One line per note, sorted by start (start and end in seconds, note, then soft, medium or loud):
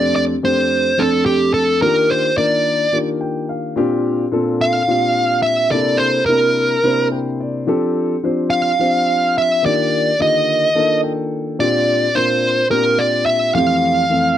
0.00 0.33 F2 medium
0.00 0.33 A3 medium
0.00 0.33 C4 medium
0.00 0.34 D4 medium
0.00 0.34 G4 medium
0.00 0.14 D5 medium
0.16 0.23 D5 medium
0.43 0.89 F2 medium
0.43 0.89 A3 medium
0.43 0.89 C4 medium
0.43 0.89 D4 medium
0.43 0.89 G4 medium
0.43 1.02 C5 medium
0.97 1.82 F2 medium
0.97 1.82 A3 medium
0.97 1.82 C4 medium
0.97 1.80 D4 medium
0.97 1.83 A4 medium
0.97 1.25 A4 medium
1.26 1.53 G4 medium
1.54 1.82 A4 medium
1.81 2.28 D#3 medium
1.81 2.28 A#3 medium
1.81 2.28 D4 medium
1.81 2.29 F4 medium
1.81 2.29 G4 medium
1.81 2.11 A#4 medium
2.10 2.37 C5 medium
2.36 2.84 D#3 medium
2.36 2.84 A#3 medium
2.36 2.84 D4 medium
2.36 2.84 F4 medium
2.36 2.84 A#4 medium
2.36 2.97 D5 medium
2.92 3.77 D#3 medium
2.92 3.77 A#3 medium
2.92 3.76 D4 medium
2.92 3.76 F4 medium
2.92 3.76 G4 medium
3.21 3.47 G5 medium
3.49 3.76 F5 medium
3.76 4.23 A#2 medium
3.76 4.23 C4 medium
3.76 4.24 D4 medium
3.76 4.24 F4 medium
3.76 4.24 G4 medium
4.32 4.79 A#2 medium
4.32 4.79 C4 medium
4.32 4.79 D4 medium
4.32 4.79 F4 medium
4.32 4.79 A4 medium
4.61 5.42 F5 loud
4.88 5.72 A#2 medium
4.88 5.72 C4 medium
4.88 5.71 D4 medium
4.88 5.73 F4 medium
4.88 5.71 G4 medium
5.42 5.70 E5 medium
5.71 6.18 C3 medium
5.71 6.18 A#3 medium
5.71 6.19 D4 medium
5.71 6.19 E4 medium
5.71 6.19 G4 medium
5.71 6.19 A4 medium
5.71 5.98 D5 medium
5.97 6.25 C5 medium
6.26 6.74 C3 medium
6.26 6.74 A#3 soft
6.26 6.75 D4 medium
6.26 6.75 E4 medium
6.26 6.75 G4 medium
6.26 7.07 A#4 medium
6.26 6.75 A#4 medium
6.83 7.68 C3 medium
6.83 7.68 A#3 medium
6.83 7.66 D4 medium
6.83 7.68 E4 medium
6.83 7.67 G4 medium
6.83 7.68 C5 medium
7.12 7.38 G5 medium
7.40 7.66 D5 medium
7.67 8.14 F3 medium
7.67 8.14 C4 medium
7.67 8.14 D4 medium
7.67 8.14 G4 medium
7.67 8.14 A4 medium
8.23 8.70 F3 medium
8.23 8.70 C4 medium
8.23 8.70 D4 medium
8.23 8.70 G4 medium
8.23 8.70 C5 medium
8.50 9.37 F5 medium
8.79 9.63 F3 medium
8.79 9.64 C4 medium
8.79 9.62 D4 medium
8.79 9.63 G4 medium
8.79 9.64 C5 medium
9.38 9.65 E5 medium
9.63 10.09 D#3 medium
9.63 10.09 A#3 medium
9.63 10.10 D4 medium
9.63 10.10 F4 medium
9.63 10.10 G4 medium
9.63 10.21 D5 medium
10.19 10.65 D3 medium
10.19 10.65 D#3 medium
10.19 10.65 A#3 medium
10.19 10.66 F4 medium
10.19 10.66 G4 medium
10.19 11.00 D#5 medium
10.75 11.59 D#3 medium
10.75 11.59 A#3 medium
10.75 11.58 D4 medium
10.75 11.59 F4 medium
10.75 11.59 A4 medium
11.04 11.55 G5 medium
11.59 12.05 A#2 medium
11.59 12.05 C4 medium
11.59 12.05 D4 medium
11.59 12.06 F4 medium
11.59 12.06 G4 medium
11.59 12.17 D5 medium
12.15 12.61 A#2 medium
12.15 12.61 C4 medium
12.15 12.61 D4 medium
12.15 12.61 F4 medium
12.15 12.61 A#4 medium
12.15 12.67 C5 medium
12.70 13.54 A#2 medium
12.70 13.53 C4 medium
12.70 13.54 D4 medium
12.70 13.54 F4 medium
12.70 13.54 G4 medium
12.70 12.99 A#4 medium
12.99 13.25 D5 medium
13.26 13.52 E5 medium
13.54 14.00 F2 medium
13.54 14.01 E3 medium
13.54 14.00 A3 medium
13.54 14.01 C4 medium
13.54 14.01 G4 medium
13.54 14.38 F5 medium
14.10 14.38 F2 medium
14.10 14.38 E3 medium
14.10 14.38 A3 medium
14.10 14.38 C4 medium
14.10 14.38 A4 medium